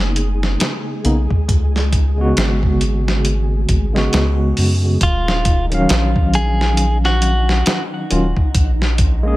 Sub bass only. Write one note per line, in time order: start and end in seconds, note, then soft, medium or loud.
0.00 0.57 F#1 medium
1.05 1.27 B1 medium
1.49 2.33 C#2 medium
2.37 3.66 G#1 medium
3.69 4.09 G#1 medium
4.13 4.53 C#2 medium
4.58 4.97 F#2 medium
5.01 5.86 D#1 loud
5.90 7.63 A#1 medium
8.11 8.34 D#1 medium
8.55 9.37 A#1 loud